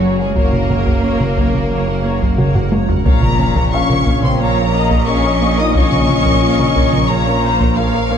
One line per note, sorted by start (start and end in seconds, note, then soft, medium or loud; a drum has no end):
0.00 0.28 F#1 medium
0.00 3.06 F#1 medium
0.00 0.19 F#3 medium
0.00 0.12 F#3 medium
0.00 0.19 F#4 medium
0.00 2.74 F#4 medium
0.00 0.19 F#4 soft
0.00 2.74 C#5 medium
0.00 0.19 C#5 soft
0.00 1.33 G#5 medium
0.00 0.19 A#5 soft
0.19 0.37 G#3 medium
0.19 0.29 F#4 medium
0.19 0.36 G#4 medium
0.19 0.36 A#4 soft
0.19 0.37 F#5 soft
0.35 0.95 F#1 medium
0.35 0.46 F#3 medium
0.35 2.68 A#3 medium
0.35 0.52 F#4 medium
0.35 2.68 A#4 medium
0.35 0.52 C#5 medium
0.35 0.52 A#5 medium
0.35 taiko medium
0.52 0.70 A#4 soft
0.52 0.70 F#5 soft
0.52 taiko mid soft
0.69 0.80 A#3 medium
0.69 0.87 F#4 soft
0.69 0.87 C#5 soft
0.69 0.87 A#5 soft
0.69 taiko mid medium
0.86 0.97 F#3 medium
0.86 1.04 A#4 soft
0.86 1.04 F#5 soft
0.86 taiko medium
1.03 1.63 F#1 medium
1.03 1.14 C#4 medium
1.03 1.20 F#4 soft
1.03 1.20 C#5 medium
1.03 1.19 A#5 medium
1.20 1.31 F#4 medium
1.20 1.38 A#4 soft
1.20 1.37 F#5 soft
1.20 taiko mid medium
1.37 1.48 F#3 medium
1.37 1.55 F#4 soft
1.37 1.54 C#5 soft
1.37 1.54 A#5 soft
1.37 taiko medium
1.54 1.64 A#3 medium
1.54 1.71 A#4 soft
1.54 1.71 F#5 soft
1.54 taiko mid soft
1.71 2.30 F#1 medium
1.71 1.81 F#3 medium
1.71 1.87 F#4 medium
1.71 1.87 C#5 medium
1.71 1.87 A#5 medium
1.87 1.98 A#3 medium
1.87 2.05 A#4 soft
1.87 2.05 F#5 soft
2.05 2.15 A#3 medium
2.05 2.22 F#4 soft
2.05 2.22 C#5 soft
2.05 2.22 A#5 soft
2.22 2.32 F#3 loud
2.22 2.39 A#4 soft
2.22 2.39 F#5 soft
2.22 taiko medium
2.38 2.98 F#1 medium
2.38 2.48 F#4 medium
2.38 2.54 F#4 soft
2.38 2.54 C#5 soft
2.38 2.55 A#5 medium
2.38 taiko mid medium
2.55 2.65 F#4 medium
2.55 2.72 A#4 soft
2.55 2.73 F#5 soft
2.55 taiko low-mid medium
2.71 2.82 F#3 medium
2.71 2.89 F#4 soft
2.71 2.89 C#5 soft
2.71 2.89 A#5 soft
2.71 taiko high medium
2.89 2.99 F#4 medium
2.89 3.06 A#4 soft
2.89 3.06 F#5 medium
2.89 taiko low medium
3.05 8.18 A#1 medium
3.05 8.18 A#2 medium
3.05 3.69 A#3 medium
3.05 3.16 A#3 medium
3.05 3.22 C#5 medium
3.05 3.22 F5 medium
3.05 3.69 A#5 loud
3.05 taiko loud
3.05 impact medium
3.23 3.39 A#4 medium
3.23 3.39 C#5 medium
3.23 taiko mid medium
3.39 3.49 C#4 medium
3.39 3.56 C#5 medium
3.39 3.57 F5 medium
3.39 taiko mid medium
3.56 3.66 A#3 loud
3.56 3.73 A#4 medium
3.56 3.73 C#5 medium
3.56 taiko medium
3.72 4.23 C#4 medium
3.72 3.83 F4 medium
3.72 3.89 C#5 medium
3.72 3.89 F5 medium
3.72 5.72 F5 medium
3.72 4.24 C#6 loud
3.89 4.00 A#4 medium
3.89 4.07 A#4 medium
3.89 4.06 C#5 medium
3.89 taiko mid medium
4.06 4.17 A#3 loud
4.06 4.23 C#5 medium
4.06 4.24 F5 medium
4.06 taiko medium
4.23 4.40 C4 medium
4.23 4.33 C#4 medium
4.23 4.41 A#4 medium
4.23 4.40 C#5 medium
4.23 4.41 C6 medium
4.23 taiko mid medium
4.40 4.50 A#3 loud
4.40 5.08 A#3 medium
4.40 4.72 C#5 medium
4.40 4.57 C#5 medium
4.40 4.56 F5 medium
4.40 5.07 A#5 loud
4.57 4.67 C#4 medium
4.57 4.75 A#4 medium
4.57 4.74 C#5 medium
4.74 4.84 C#4 medium
4.74 4.91 C#5 medium
4.74 7.06 D#5 medium
4.74 4.92 F5 medium
4.90 5.01 A#3 loud
4.90 5.08 A#4 medium
4.90 5.08 C#5 medium
4.90 taiko medium
5.07 5.58 C#4 medium
5.07 5.18 A#4 medium
5.07 5.24 C#5 medium
5.07 5.24 F5 medium
5.07 5.58 C#6 loud
5.24 5.34 A#4 medium
5.24 5.42 A#4 medium
5.24 5.41 C#5 medium
5.41 5.52 A#3 loud
5.41 5.58 C#5 medium
5.41 5.59 F5 medium
5.58 5.75 D#4 medium
5.58 5.68 A#4 medium
5.58 5.76 A#4 medium
5.58 5.74 C#5 medium
5.58 5.76 D#6 medium
5.74 5.85 A#3 medium
5.74 7.07 C#4 loud
5.74 5.91 C#5 medium
5.74 5.91 F5 medium
5.74 7.07 C#6 loud
5.74 taiko loud
5.92 6.10 A#4 medium
5.92 6.08 C#5 medium
5.92 taiko mid medium
6.08 6.19 C#4 medium
6.08 6.26 C#5 medium
6.08 6.26 F5 medium
6.08 taiko mid medium
6.25 6.35 A#3 loud
6.25 6.43 A#4 medium
6.25 6.42 C#5 medium
6.25 taiko medium
6.43 6.53 F4 medium
6.43 6.59 C#5 medium
6.43 6.59 F5 medium
6.59 6.69 A#4 medium
6.59 6.77 A#4 medium
6.59 6.76 C#5 medium
6.59 taiko mid medium
6.76 6.86 A#3 loud
6.76 6.92 C#5 medium
6.76 6.94 F5 medium
6.76 taiko medium
6.93 7.03 C#4 medium
6.93 7.10 A#4 medium
6.93 7.10 C#5 medium
6.93 taiko mid medium
7.09 7.20 A#3 loud
7.09 7.76 A#3 medium
7.09 7.43 C#5 medium
7.09 7.26 C#5 medium
7.09 7.26 F5 medium
7.09 7.77 A#5 loud
7.27 7.37 C#4 medium
7.27 7.44 A#4 medium
7.27 7.43 C#5 medium
7.44 7.54 C#4 medium
7.44 7.78 C5 medium
7.44 7.60 C#5 medium
7.44 7.61 F5 medium
7.61 7.71 A#3 loud
7.61 7.78 A#4 medium
7.61 7.76 C#5 medium
7.61 taiko medium
7.77 8.18 F3 medium
7.77 7.88 A#4 medium
7.77 8.12 A#4 medium
7.77 7.93 C#5 medium
7.77 8.18 F5 loud
7.77 7.93 F5 medium
7.94 8.05 A#4 medium
7.94 8.12 A#4 medium
7.94 8.10 C#5 medium
8.11 8.18 A#3 loud
8.11 8.18 C#5 medium
8.11 8.18 F5 medium